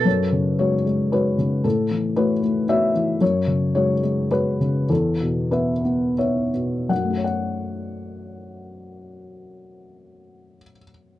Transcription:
<<
  \new Staff \with { instrumentName = "Felt piano" } { \time 3/4 \key fis \minor \tempo 4 = 100 cis''4 cis''4 b'4 | a'4 b'4 e''4 | cis''4 cis''4 b'4 | a'4 b'4 cis''8 r8 |
<fis, fis a fis' cis'' fis''>2.~ | <fis, fis a fis' cis'' fis''>2. | }
  \new Staff \with { instrumentName = "Felt piano" } { \time 3/4 \key fis \minor fis,8 cis8 <gis fis'>8 gis8 <gis fis' cis''>8 cis8 | a,8 e8 <a fis' cis''>8 a8 <a fis' cis''>8 e8 | fis,8 cis8 <gis fis'>8 gis8 <gis fis' cis''>8 cis8 | e,8 b,8 <b e''>8 b8 <b b' e''>8 b,8 |
r2. | r2. | }
>>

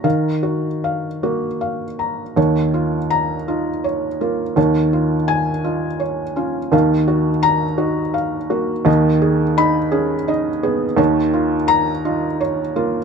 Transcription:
<<
  \new Staff \with { instrumentName = "Felt piano" } { \time 6/8 \key ees \minor \tempo 4. = 56 << { r2. | r4 bes''4 r4 | r4 aes''4 r4 | r4 bes''4 r4 |
r4 ces'''4 r4 | r4 bes''4 r4 | } \\ { <f'' bes''>8 ges'8 f''8 ges'8 f''8 bes''8 | des''8 f'4 f'8 des''8 f'8 | des''8 f'4 f'8 des''8 f'8 | f''8 ges'4 ges'8 f''8 ges'8 |
ees''8 aes'4 aes'8 ees''8 aes'8 | des''8 f'4 f'8 des''8 f'8 | } >> }
  \new Staff \with { instrumentName = "Felt piano" } { \time 6/8 \key ees \minor ees4. bes4 r8 | <ees, ees>4. ees'8 r8 bes8 | <ees, ees>4. ees'8 r8 des'8 | <ees, ees>4. ees'8 r8 bes8 |
<ees, ees>4 ees'8 des'8 ees'8 ces'8 | <ees, ees>4. ees'8 r8 bes8 | }
>>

